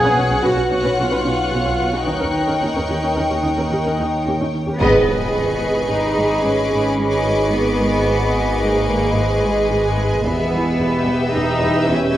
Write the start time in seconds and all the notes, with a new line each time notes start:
Already playing: B1 G#4 B4 C#5 F#5 C#6 F#6
0.03 B1 C#4 B4
0.16 B1 B2 C#4 F#4
0.30 B1 C#4
0.43 B1 B2 C#4 F#4 B4
0.57 B1 C#4 F#4
0.71 B1 B2 C#4
0.84 B1 C#4 B4
0.98 B1 B2 C#4 F4 F#4
1.11 B1 C#4 B4
1.24 B1 B2 C#4
1.52 B1 B2 C#4 F#4
1.65 B1 C#4
1.80 B2
1.93 B1 C#4 F#4
2.06 D#2 D#3 C#4 D#4 A#4 G5
2.20 D#2 C#4 A#4
2.35 D#3
2.47 D#2 C#4 A#4
2.61 D#2 D#3 C#4 D#4
2.76 D#2 C#4 A#4
2.89 D#2 D#3 C#4 G4
3.03 D#2 C#4 D#4
3.16 D#2 D#3 C#4 A#4
3.30 D#2 C#4 G4
3.44 D#2 D#3 C#4 D#4
3.57 D#2 C#4 A#4
3.71 D#2 D#3 C#4 G4
3.85 D#2 C#4 A#4
3.98 D#2 D#3 C#4 D#4
4.26 D#2 D#3 C#4 G4
4.40 D#2 C#4 D#4
4.53 D#3
4.67 D#2 C#4 G4
4.79 G#1 G#2 B3 G#4 B4 D#5 G#5 B5, impact
5.07 G#3
5.35 G#2 C#6
5.62 G#2
5.89 G#2 D#4 D6
6.17 G#2
6.44 G#2 C#4
6.71 G#2
6.98 G#2
7.25 G#3
7.52 G#2 B3
7.80 G#3
8.07 G#2
8.34 G#2
8.62 G#2 A#3
8.89 G#2
9.16 G#2 G#3
9.43 G#2
9.71 G#2
9.98 G#3
10.24 E1 E2 B3 G4 B4 E5 G5 E6
10.52 E3
10.79 E2 G6
11.07 E2
11.35 E2 D#4
11.62 E2
11.89 E2 C#4